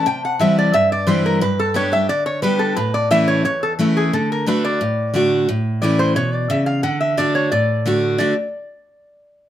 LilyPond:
<<
  \new Staff \with { instrumentName = "Resonator guitar played with a steel bar" } { \time 4/4 \key d \major \tempo 4 = 177 g''8 fis''8 e''8 d''8 e''8 d''8 c''8 bes'8 | b'8 a'8 cis''8 e''8 d''8 cis''8 b'8 a'8 | b'8 d''8 e''8 cis''8 cis''8 a'8 r8 gis'8 | a'8 bes'8 b'8 d''2~ d''16 r16 |
r4 d''8 c''8 cis''8 d''8 e''8 f''8 | fis''8 e''8 d''8 cis''8 d''4.~ d''16 r16 | d''8 r2. r8 | }
  \new Staff \with { instrumentName = "Steel-string acoustic guitar" } { \time 4/4 \key d \major << { r4 <e g c' e'>4 r4 <e g c' e'>4 | r4 <g b d' g'>8 <d' g'>8 r4 <g b d' g'>4 | r4 <e a cis' e'>4 r4 <e a cis' e'>4 | r4 <d a d' fis'>4 r4 <d a d' fis'>4 |
r4 <e a cis' e'>4 r2 | r4 <d a d' fis'>4 r4 <d a d' fis'>4 | <d a d' fis'>8 r2. r8 | } \\ { c2 g,2 | g,2 d2 | a,2 e,2 | d2 a,2 |
a,2 b,4 cis4 | d2 a,2 | r1 | } >> }
>>